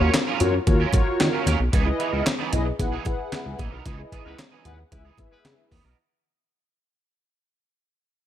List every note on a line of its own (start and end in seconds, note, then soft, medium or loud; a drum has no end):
0.00 0.10 D#2 loud
0.00 0.12 F#3 medium
0.00 0.12 C#4 medium
0.00 0.13 F4 medium
0.00 0.12 F4 medium
0.00 0.13 F#4 medium
0.00 0.13 A#4 medium
0.00 0.13 C#5 loud
0.00 0.11 C#5 medium
0.14 muted clean electric guitar stroke soft
0.14 snare loud
0.14 clap loud
0.14 closed hi-hat medium
0.14 high conga medium
0.27 0.39 F#3 medium
0.27 0.40 C#4 medium
0.27 0.40 F4 medium
0.27 0.40 A#4 medium
0.40 0.59 F#2 loud
0.40 0.54 F4 loud
0.40 0.54 F#4 medium
0.40 0.54 A#4 medium
0.40 0.55 C#5 loud
0.40 muted clean electric guitar stroke medium
0.40 closed hi-hat medium
0.40 low conga medium
0.54 muted clean electric guitar stroke medium
0.66 0.86 D#2 medium
0.66 0.80 F4 medium
0.66 0.80 F#4 medium
0.66 0.81 A#4 medium
0.66 0.81 C#5 loud
0.66 muted clean electric guitar stroke soft
0.66 kick loud
0.66 closed hi-hat medium
0.66 muted conga soft
0.80 0.92 F#3 medium
0.80 0.93 C#4 medium
0.80 0.93 F4 medium
0.80 0.93 A#4 medium
0.93 1.47 F4 loud
0.93 1.48 F#4 medium
0.93 1.48 A#4 medium
0.93 1.48 C#5 loud
0.93 muted clean electric guitar stroke soft
0.93 kick loud
0.93 closed hi-hat medium
0.93 muted conga soft
0.93 low conga medium
1.07 muted clean electric guitar stroke soft
1.20 1.29 D#3 medium
1.20 muted clean electric guitar stroke soft
1.20 snare loud
1.20 clap medium
1.20 closed hi-hat medium
1.20 high conga medium
1.33 1.45 F#3 medium
1.33 1.45 C#4 medium
1.33 1.44 F4 medium
1.33 1.44 A#4 medium
1.46 1.56 D#2 loud
1.46 1.60 F#3 medium
1.46 1.60 C#4 medium
1.46 1.59 F4 medium
1.46 1.58 A#4 medium
1.46 closed hi-hat medium
1.46 high conga medium
1.59 1.69 B1 medium
1.59 muted clean electric guitar stroke medium
1.72 1.92 C#2 loud
1.72 1.87 E3 medium
1.72 1.87 B3 medium
1.72 1.87 D#4 medium
1.72 1.88 G#4 medium
1.72 kick loud
1.72 closed hi-hat loud
1.72 muted conga soft
1.85 2.25 E4 medium
1.85 2.25 G#4 medium
1.85 2.25 B4 medium
1.85 2.25 D#5 loud
1.99 2.10 E3 medium
1.99 2.11 B3 medium
1.99 2.11 D#4 medium
1.99 2.11 G#4 medium
1.99 closed hi-hat medium
2.12 2.22 C#2 medium
2.12 2.25 E3 medium
2.12 2.24 B3 medium
2.12 2.24 D#4 medium
2.12 2.24 A#4 medium
2.26 muted clean electric guitar stroke soft
2.26 snare loud
2.26 clap loud
2.26 closed hi-hat loud
2.26 high conga medium
2.39 2.51 E3 medium
2.39 2.52 B3 medium
2.39 2.52 D#4 medium
2.39 2.52 G#4 medium
2.52 2.72 B1 medium
2.52 2.66 E4 medium
2.52 2.66 G#4 medium
2.52 2.67 B4 medium
2.52 2.67 D#5 loud
2.52 muted clean electric guitar stroke soft
2.52 closed hi-hat medium
2.52 low conga medium
2.66 muted clean electric guitar stroke medium
2.79 2.98 B1 loud
2.79 2.93 E4 medium
2.79 2.93 G#4 medium
2.79 2.93 B4 medium
2.79 2.94 F#5 loud
2.79 muted clean electric guitar stroke soft
2.79 kick loud
2.79 closed hi-hat medium
2.79 muted conga medium
2.92 3.04 E3 medium
2.92 3.05 B3 medium
2.92 3.05 D#4 medium
2.92 3.06 G#4 medium
3.05 3.60 E4 medium
3.05 3.60 G#4 medium
3.05 3.60 B4 medium
3.05 3.60 F#5 loud
3.05 muted clean electric guitar stroke medium
3.05 kick loud
3.05 closed hi-hat medium
3.05 muted conga soft
3.19 muted clean electric guitar stroke soft
3.32 muted clean electric guitar stroke soft
3.32 snare loud
3.32 clap medium
3.32 closed hi-hat medium
3.32 high conga medium
3.46 3.55 C#2 medium
3.46 muted clean electric guitar stroke soft
3.59 3.69 A#1 medium
3.59 3.72 E3 medium
3.59 3.72 B3 medium
3.59 3.71 D#4 medium
3.59 3.72 G#4 medium
3.59 kick loud
3.59 closed hi-hat medium
3.59 high conga medium
3.72 3.82 B1 loud
3.72 3.84 E3 medium
3.72 3.84 B3 medium
3.72 3.83 D#4 medium
3.72 3.83 A#4 medium
3.85 4.05 C#2 loud
3.85 3.99 E3 medium
3.85 4.00 B3 medium
3.85 4.00 D#4 medium
3.85 4.00 G#4 medium
3.85 kick loud
3.85 closed hi-hat medium
3.85 muted conga medium
3.98 4.37 E4 medium
3.98 4.38 G#4 medium
3.98 4.38 B4 medium
3.98 4.38 D#5 medium
4.12 4.23 E3 medium
4.12 4.23 B3 medium
4.12 4.24 D#4 medium
4.12 4.24 G#4 medium
4.12 kick medium
4.12 closed hi-hat medium
4.25 4.35 C#2 medium
4.25 4.37 E3 medium
4.25 4.37 G#3 medium
4.25 4.37 B3 medium
4.25 4.37 D#4 medium
4.25 4.37 E4 medium
4.25 4.36 A#4 medium
4.25 4.37 B4 medium
4.38 muted clean electric guitar stroke soft
4.38 snare loud
4.38 clap loud
4.38 closed hi-hat medium
4.38 high conga medium
4.51 4.64 E3 medium
4.51 4.64 B3 medium
4.51 4.65 D#4 medium
4.51 4.65 G#4 medium
4.65 4.84 D#2 medium
4.65 4.77 G#3 medium
4.65 4.77 B3 medium
4.65 4.79 E4 medium
4.65 4.77 E4 medium
4.65 4.79 G#4 medium
4.65 4.79 B4 medium
4.65 4.77 B4 medium
4.65 4.80 F#5 loud
4.65 muted clean electric guitar stroke medium
4.65 closed hi-hat medium
4.65 low conga medium
4.78 muted clean electric guitar stroke soft
4.91 5.11 C#2 loud
4.91 5.03 G#3 medium
4.91 5.03 B3 medium
4.91 5.05 E4 loud
4.91 5.03 E4 medium
4.91 5.06 G#4 medium
4.91 5.06 B4 medium
4.91 5.03 B4 medium
4.91 5.06 E5 loud
4.91 muted clean electric guitar stroke soft
4.91 kick loud
4.91 closed hi-hat medium
4.91 muted conga medium
5.05 5.17 E3 medium
5.05 5.17 B3 medium
5.05 5.18 D#4 medium
5.05 5.18 G#4 medium
5.18 5.72 E4 medium
5.18 5.72 G#4 medium
5.18 5.73 B4 medium
5.18 5.73 E5 medium
5.18 kick loud
5.18 closed hi-hat medium
5.18 muted conga medium
5.18 low conga medium
5.31 5.48 G#3 medium
5.31 5.48 B3 loud
5.31 5.48 E4 medium
5.31 5.48 B4 loud
5.31 muted clean electric guitar stroke medium
5.44 5.54 C#3 loud
5.44 muted clean electric guitar stroke soft
5.44 snare loud
5.44 clap medium
5.44 closed hi-hat medium
5.44 high conga medium
5.58 muted clean electric guitar stroke medium
5.71 5.81 D#2 medium
5.71 5.85 E3 medium
5.71 5.84 B3 medium
5.71 5.84 D#4 medium
5.71 5.84 G#4 medium
5.71 kick medium
5.71 open hi-hat medium
5.71 high conga medium
5.84 5.94 B1 loud
5.84 5.96 E3 soft
5.84 5.96 B3 medium
5.84 5.96 D#4 medium
5.84 5.95 A#4 medium